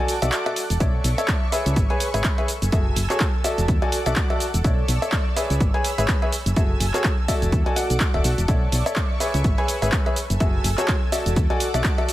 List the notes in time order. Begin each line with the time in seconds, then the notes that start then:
Already playing: A4 F#5 D6
0.00 F#4 A4 D5 G#5
0.08 open hi-hat, shaker
0.22 B1 F#4 A4 D5 E5, closed hi-hat, shaker
0.32 clap, closed hi-hat, shaker
0.46 F#4 A4 D5 E5, closed hi-hat
0.56 open hi-hat, shaker
0.70 E1, open hi-hat, shaker
0.80 B1 A4 C#5 D5 E5 C#6, kick, closed hi-hat, shaker
1.04 B1, open hi-hat, shaker
1.18 A4 C#5 D5 E5, closed hi-hat, shaker
1.28 kick, clap, closed hi-hat, shaker
1.52 G#4 B4 C#5 E5, open hi-hat, shaker
1.66 C#2, closed hi-hat, shaker
1.76 G#1 B4 C#6, kick, closed hi-hat, shaker
1.90 G#4 B4 C#5 G#5, closed hi-hat
2.00 open hi-hat, shaker
2.14 G#1 G#4 B4 C#5 E5, closed hi-hat, shaker
2.24 kick, clap, closed hi-hat, shaker
2.38 G#4 B4 C#5 E5, closed hi-hat
2.48 A4 G#5 E6, open hi-hat, shaker
2.62 F#1, closed hi-hat, shaker
2.72 F#1 F#4 G#4 A4 E5, kick, closed hi-hat, shaker
2.96 F#1, open hi-hat, shaker
3.10 F#4 G#4 A4 C#5, clap, closed hi-hat, shaker
3.20 kick, clap, closed hi-hat, shaker
3.44 F#4 A4 D5 E5, open hi-hat, shaker
3.58 E1, closed hi-hat, shaker
3.68 E2 F#5 D6, kick, closed hi-hat, shaker
3.82 F#4 A4 D5 G#5, closed hi-hat
3.92 open hi-hat, shaker
4.06 B1 F#4 A4 D5 E5, closed hi-hat, shaker
4.16 kick, clap, closed hi-hat, shaker
4.30 F#4 A4 D5 E5, closed hi-hat
4.40 open hi-hat, shaker
4.54 E1, closed hi-hat, shaker
4.64 B1 A4 C#5 D5 E5 C#6 E6, kick, closed hi-hat, shaker
4.88 B1, open hi-hat, shaker
5.02 A4 C#5 D5 E5, closed hi-hat, shaker
5.12 kick, clap, closed hi-hat, shaker
5.36 G#4 B4 C#5 E5, open hi-hat, shaker
5.50 C#2, closed hi-hat, shaker
5.60 G#1 C#5 B5 E6, kick, closed hi-hat, shaker
5.74 G#4 B4 C#5 G#5, closed hi-hat
5.84 open hi-hat, shaker
5.98 G#1 G#4 B4 C#5 E5, closed hi-hat, shaker
6.08 kick, clap, closed hi-hat, shaker
6.22 G#4 B4 C#5 E5, closed hi-hat
6.32 A4 G#5 E6, open hi-hat, shaker
6.46 F#1, closed hi-hat, shaker
6.56 F#1 F#4 G#4 A4 E5, kick, closed hi-hat, shaker
6.80 F#1, open hi-hat, shaker
6.94 F#4 G#4 A4 C#5, clap, closed hi-hat, shaker
7.04 kick, clap, closed hi-hat, shaker
7.28 F#4 A4 D5 E5, kick, open hi-hat, shaker
7.42 E1, closed hi-hat, shaker
7.52 E2 F#5 D6, kick, closed hi-hat, shaker
7.66 F#4 A4 D5 G#5, closed hi-hat
7.76 F#4 A4 D5 F#5, open hi-hat, shaker
7.90 B1, closed hi-hat, shaker
8.00 kick, clap, closed hi-hat, shaker
8.14 D1 F#4 A4 D5 E5, closed hi-hat
8.24 B1, open hi-hat, shaker
8.38 E1, closed hi-hat, shaker
8.48 B1 A4 C#5 D5 E5 C#6, kick, closed hi-hat, shaker
8.72 B1, open hi-hat, shaker
8.86 A4 C#5 D5 E5, closed hi-hat, shaker
8.96 kick, clap, closed hi-hat, shaker
9.20 G#4 B4 C#5 E5, open hi-hat, shaker
9.34 C#2, closed hi-hat, shaker
9.44 G#1 B4, kick, closed hi-hat, shaker
9.58 G#4 B4 C#5 G#5, closed hi-hat
9.68 open hi-hat, shaker
9.82 G#1 G#4 B4 C#5 E5, closed hi-hat, shaker
9.92 kick, clap, closed hi-hat, shaker
10.06 G#4 B4 C#5 E5, closed hi-hat
10.16 A4 G#5 E6, open hi-hat, shaker
10.30 F#1, closed hi-hat, shaker
10.40 F#1 F#4 G#4 A4 E5, kick, closed hi-hat, shaker
10.64 F#1, open hi-hat, shaker
10.78 F#4 G#4 A4 C#5, clap, closed hi-hat, shaker
10.88 kick, clap, closed hi-hat, shaker
11.12 F#4 A4 D5 E5, open hi-hat, shaker
11.26 E1, closed hi-hat, shaker
11.36 E2 F#5 D6, kick, closed hi-hat, shaker
11.50 F#4 A4 D5 G#5, closed hi-hat
11.60 open hi-hat, shaker
11.74 B1 F#4 A4 D5 E5, closed hi-hat, shaker
11.84 kick, clap, closed hi-hat, shaker
11.98 F#4 A4 D5 E5, closed hi-hat
12.09 open hi-hat, shaker